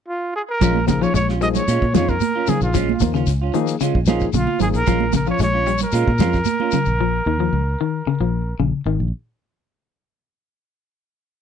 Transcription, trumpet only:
0, 0, Header, 1, 2, 480
1, 0, Start_track
1, 0, Key_signature, -5, "minor"
1, 0, Tempo, 532387
1, 553, Time_signature, 4, 2, 24, 8
1, 10288, End_track
2, 0, Start_track
2, 0, Title_t, "Trumpet"
2, 0, Program_c, 0, 56
2, 76, Note_on_c, 0, 65, 75
2, 298, Note_off_c, 0, 65, 0
2, 321, Note_on_c, 0, 68, 81
2, 375, Note_off_c, 0, 68, 0
2, 447, Note_on_c, 0, 70, 95
2, 774, Note_off_c, 0, 70, 0
2, 795, Note_on_c, 0, 70, 83
2, 928, Note_on_c, 0, 73, 89
2, 941, Note_off_c, 0, 70, 0
2, 1036, Note_off_c, 0, 73, 0
2, 1042, Note_on_c, 0, 73, 90
2, 1149, Note_off_c, 0, 73, 0
2, 1290, Note_on_c, 0, 75, 96
2, 1342, Note_off_c, 0, 75, 0
2, 1406, Note_on_c, 0, 73, 88
2, 1735, Note_off_c, 0, 73, 0
2, 1765, Note_on_c, 0, 73, 83
2, 1889, Note_on_c, 0, 70, 95
2, 1903, Note_off_c, 0, 73, 0
2, 2247, Note_on_c, 0, 68, 80
2, 2260, Note_off_c, 0, 70, 0
2, 2363, Note_off_c, 0, 68, 0
2, 2369, Note_on_c, 0, 65, 70
2, 2812, Note_off_c, 0, 65, 0
2, 3929, Note_on_c, 0, 65, 77
2, 4146, Note_off_c, 0, 65, 0
2, 4168, Note_on_c, 0, 68, 79
2, 4221, Note_off_c, 0, 68, 0
2, 4292, Note_on_c, 0, 70, 102
2, 4617, Note_off_c, 0, 70, 0
2, 4647, Note_on_c, 0, 70, 83
2, 4756, Note_off_c, 0, 70, 0
2, 4778, Note_on_c, 0, 73, 91
2, 4877, Note_off_c, 0, 73, 0
2, 4896, Note_on_c, 0, 73, 100
2, 5224, Note_off_c, 0, 73, 0
2, 5256, Note_on_c, 0, 70, 87
2, 7725, Note_off_c, 0, 70, 0
2, 10288, End_track
0, 0, End_of_file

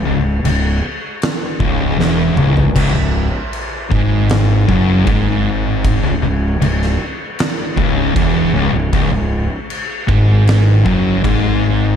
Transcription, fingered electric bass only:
0, 0, Header, 1, 2, 480
1, 0, Start_track
1, 0, Key_signature, 4, "minor"
1, 0, Tempo, 771208
1, 1718, Time_signature, 4, 2, 24, 8
1, 7445, End_track
2, 0, Start_track
2, 0, Title_t, "Fingered electric bass"
2, 0, Program_c, 0, 33
2, 30, Note_on_c, 0, 25, 80
2, 257, Note_off_c, 0, 25, 0
2, 268, Note_on_c, 0, 25, 79
2, 496, Note_off_c, 0, 25, 0
2, 993, Note_on_c, 0, 25, 91
2, 1218, Note_off_c, 0, 25, 0
2, 1222, Note_on_c, 0, 28, 89
2, 1453, Note_off_c, 0, 28, 0
2, 1464, Note_on_c, 0, 25, 100
2, 1579, Note_off_c, 0, 25, 0
2, 1583, Note_on_c, 0, 25, 71
2, 1702, Note_off_c, 0, 25, 0
2, 1716, Note_on_c, 0, 25, 100
2, 1824, Note_off_c, 0, 25, 0
2, 1828, Note_on_c, 0, 25, 87
2, 2056, Note_off_c, 0, 25, 0
2, 2434, Note_on_c, 0, 32, 81
2, 2891, Note_off_c, 0, 32, 0
2, 2917, Note_on_c, 0, 30, 92
2, 3141, Note_off_c, 0, 30, 0
2, 3153, Note_on_c, 0, 32, 79
2, 3731, Note_off_c, 0, 32, 0
2, 3753, Note_on_c, 0, 25, 82
2, 3861, Note_off_c, 0, 25, 0
2, 3865, Note_on_c, 0, 25, 78
2, 4095, Note_off_c, 0, 25, 0
2, 4102, Note_on_c, 0, 25, 81
2, 4333, Note_off_c, 0, 25, 0
2, 4839, Note_on_c, 0, 25, 96
2, 5062, Note_off_c, 0, 25, 0
2, 5077, Note_on_c, 0, 28, 83
2, 5301, Note_off_c, 0, 28, 0
2, 5308, Note_on_c, 0, 25, 96
2, 5425, Note_off_c, 0, 25, 0
2, 5427, Note_on_c, 0, 25, 77
2, 5544, Note_off_c, 0, 25, 0
2, 5555, Note_on_c, 0, 25, 98
2, 5661, Note_off_c, 0, 25, 0
2, 5665, Note_on_c, 0, 25, 91
2, 5894, Note_off_c, 0, 25, 0
2, 6275, Note_on_c, 0, 32, 93
2, 6731, Note_off_c, 0, 32, 0
2, 6757, Note_on_c, 0, 30, 92
2, 6980, Note_off_c, 0, 30, 0
2, 6997, Note_on_c, 0, 32, 79
2, 7445, Note_off_c, 0, 32, 0
2, 7445, End_track
0, 0, End_of_file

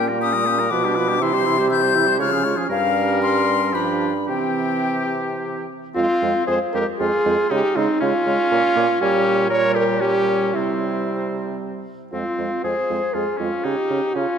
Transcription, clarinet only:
0, 0, Header, 1, 2, 480
1, 0, Start_track
1, 0, Key_signature, -4, "minor"
1, 0, Tempo, 498753
1, 1166, Time_signature, 3, 2, 24, 8
1, 3096, Tempo, 545951
1, 5496, Tempo, 522193
1, 6456, Tempo, 504626
1, 9336, Tempo, 526778
1, 11256, Tempo, 504626
1, 13403, End_track
2, 0, Start_track
2, 0, Title_t, "Clarinet"
2, 0, Program_c, 0, 71
2, 0, Note_on_c, 0, 61, 73
2, 112, Note_on_c, 0, 58, 68
2, 126, Note_off_c, 0, 61, 0
2, 223, Note_off_c, 0, 58, 0
2, 230, Note_on_c, 0, 61, 77
2, 348, Note_on_c, 0, 58, 68
2, 362, Note_off_c, 0, 61, 0
2, 468, Note_on_c, 0, 61, 78
2, 482, Note_off_c, 0, 58, 0
2, 585, Note_on_c, 0, 58, 65
2, 599, Note_off_c, 0, 61, 0
2, 697, Note_off_c, 0, 58, 0
2, 702, Note_on_c, 0, 65, 78
2, 817, Note_on_c, 0, 62, 77
2, 831, Note_off_c, 0, 65, 0
2, 935, Note_on_c, 0, 65, 85
2, 950, Note_off_c, 0, 62, 0
2, 1049, Note_on_c, 0, 62, 80
2, 1064, Note_off_c, 0, 65, 0
2, 1167, Note_off_c, 0, 62, 0
2, 1172, Note_on_c, 0, 64, 83
2, 1287, Note_on_c, 0, 67, 84
2, 1302, Note_off_c, 0, 64, 0
2, 1404, Note_on_c, 0, 64, 86
2, 1419, Note_off_c, 0, 67, 0
2, 1521, Note_on_c, 0, 67, 80
2, 1535, Note_off_c, 0, 64, 0
2, 1634, Note_off_c, 0, 67, 0
2, 1640, Note_on_c, 0, 64, 79
2, 1766, Note_on_c, 0, 67, 73
2, 1780, Note_off_c, 0, 64, 0
2, 1885, Note_on_c, 0, 64, 80
2, 1899, Note_off_c, 0, 67, 0
2, 2006, Note_on_c, 0, 67, 68
2, 2020, Note_off_c, 0, 64, 0
2, 2122, Note_off_c, 0, 67, 0
2, 2134, Note_on_c, 0, 65, 70
2, 2242, Note_on_c, 0, 61, 75
2, 2257, Note_off_c, 0, 65, 0
2, 2362, Note_on_c, 0, 65, 77
2, 2376, Note_off_c, 0, 61, 0
2, 2485, Note_on_c, 0, 61, 84
2, 2499, Note_off_c, 0, 65, 0
2, 2605, Note_off_c, 0, 61, 0
2, 2611, Note_on_c, 0, 61, 84
2, 3564, Note_on_c, 0, 62, 76
2, 3577, Note_off_c, 0, 61, 0
2, 3898, Note_off_c, 0, 62, 0
2, 4039, Note_on_c, 0, 60, 72
2, 5238, Note_off_c, 0, 60, 0
2, 5507, Note_on_c, 0, 56, 71
2, 5613, Note_off_c, 0, 56, 0
2, 5750, Note_on_c, 0, 56, 74
2, 5855, Note_off_c, 0, 56, 0
2, 5985, Note_on_c, 0, 56, 62
2, 6091, Note_off_c, 0, 56, 0
2, 6225, Note_on_c, 0, 56, 69
2, 6331, Note_off_c, 0, 56, 0
2, 6459, Note_on_c, 0, 56, 59
2, 6569, Note_off_c, 0, 56, 0
2, 6702, Note_on_c, 0, 56, 70
2, 6811, Note_off_c, 0, 56, 0
2, 6945, Note_on_c, 0, 56, 72
2, 7054, Note_off_c, 0, 56, 0
2, 7187, Note_on_c, 0, 56, 79
2, 7296, Note_off_c, 0, 56, 0
2, 7426, Note_on_c, 0, 56, 67
2, 7534, Note_off_c, 0, 56, 0
2, 7666, Note_on_c, 0, 56, 75
2, 7773, Note_off_c, 0, 56, 0
2, 7902, Note_on_c, 0, 58, 70
2, 8010, Note_off_c, 0, 58, 0
2, 8129, Note_on_c, 0, 58, 86
2, 8239, Note_off_c, 0, 58, 0
2, 8372, Note_on_c, 0, 55, 80
2, 8814, Note_off_c, 0, 55, 0
2, 8841, Note_on_c, 0, 55, 75
2, 9320, Note_off_c, 0, 55, 0
2, 9333, Note_on_c, 0, 55, 69
2, 9804, Note_off_c, 0, 55, 0
2, 9813, Note_on_c, 0, 55, 64
2, 10991, Note_off_c, 0, 55, 0
2, 11258, Note_on_c, 0, 56, 60
2, 11368, Note_off_c, 0, 56, 0
2, 11502, Note_on_c, 0, 56, 52
2, 11611, Note_off_c, 0, 56, 0
2, 11750, Note_on_c, 0, 56, 53
2, 11857, Note_off_c, 0, 56, 0
2, 11988, Note_on_c, 0, 56, 51
2, 12095, Note_off_c, 0, 56, 0
2, 12227, Note_on_c, 0, 56, 53
2, 12333, Note_off_c, 0, 56, 0
2, 12461, Note_on_c, 0, 56, 61
2, 12568, Note_off_c, 0, 56, 0
2, 12696, Note_on_c, 0, 61, 56
2, 12805, Note_off_c, 0, 61, 0
2, 12940, Note_on_c, 0, 61, 62
2, 13047, Note_off_c, 0, 61, 0
2, 13177, Note_on_c, 0, 61, 58
2, 13284, Note_off_c, 0, 61, 0
2, 13403, End_track
0, 0, End_of_file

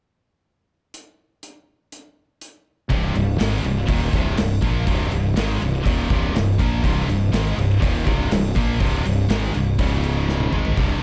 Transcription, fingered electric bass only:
0, 0, Header, 1, 2, 480
1, 0, Start_track
1, 0, Tempo, 492207
1, 914, Time_signature, 4, 2, 24, 8
1, 10755, End_track
2, 0, Start_track
2, 0, Title_t, "Fingered electric bass"
2, 0, Program_c, 0, 33
2, 2828, Note_on_c, 0, 24, 91
2, 3054, Note_off_c, 0, 24, 0
2, 3076, Note_on_c, 0, 24, 80
2, 3298, Note_off_c, 0, 24, 0
2, 3313, Note_on_c, 0, 32, 84
2, 3536, Note_off_c, 0, 32, 0
2, 3551, Note_on_c, 0, 24, 77
2, 3775, Note_off_c, 0, 24, 0
2, 3789, Note_on_c, 0, 27, 91
2, 4014, Note_off_c, 0, 27, 0
2, 4031, Note_on_c, 0, 24, 89
2, 4255, Note_off_c, 0, 24, 0
2, 4282, Note_on_c, 0, 24, 82
2, 4501, Note_off_c, 0, 24, 0
2, 4510, Note_on_c, 0, 34, 81
2, 4734, Note_off_c, 0, 34, 0
2, 4747, Note_on_c, 0, 24, 92
2, 4973, Note_off_c, 0, 24, 0
2, 4993, Note_on_c, 0, 24, 76
2, 5216, Note_off_c, 0, 24, 0
2, 5235, Note_on_c, 0, 32, 94
2, 5457, Note_off_c, 0, 32, 0
2, 5476, Note_on_c, 0, 24, 80
2, 5698, Note_off_c, 0, 24, 0
2, 5711, Note_on_c, 0, 27, 89
2, 5935, Note_off_c, 0, 27, 0
2, 5955, Note_on_c, 0, 24, 87
2, 6177, Note_off_c, 0, 24, 0
2, 6184, Note_on_c, 0, 24, 79
2, 6411, Note_off_c, 0, 24, 0
2, 6427, Note_on_c, 0, 34, 86
2, 6652, Note_off_c, 0, 34, 0
2, 6670, Note_on_c, 0, 24, 97
2, 6894, Note_off_c, 0, 24, 0
2, 6903, Note_on_c, 0, 24, 77
2, 7130, Note_off_c, 0, 24, 0
2, 7143, Note_on_c, 0, 32, 86
2, 7370, Note_off_c, 0, 32, 0
2, 7388, Note_on_c, 0, 24, 74
2, 7613, Note_off_c, 0, 24, 0
2, 7627, Note_on_c, 0, 27, 92
2, 7852, Note_off_c, 0, 27, 0
2, 7868, Note_on_c, 0, 24, 97
2, 8093, Note_off_c, 0, 24, 0
2, 8109, Note_on_c, 0, 24, 85
2, 8333, Note_off_c, 0, 24, 0
2, 8348, Note_on_c, 0, 34, 85
2, 8573, Note_off_c, 0, 34, 0
2, 8584, Note_on_c, 0, 24, 96
2, 8810, Note_off_c, 0, 24, 0
2, 8827, Note_on_c, 0, 24, 77
2, 9052, Note_off_c, 0, 24, 0
2, 9067, Note_on_c, 0, 32, 89
2, 9292, Note_off_c, 0, 32, 0
2, 9312, Note_on_c, 0, 24, 75
2, 9535, Note_off_c, 0, 24, 0
2, 9550, Note_on_c, 0, 25, 91
2, 10232, Note_off_c, 0, 25, 0
2, 10274, Note_on_c, 0, 32, 86
2, 10496, Note_off_c, 0, 32, 0
2, 10507, Note_on_c, 0, 24, 86
2, 10655, Note_off_c, 0, 24, 0
2, 10755, End_track
0, 0, End_of_file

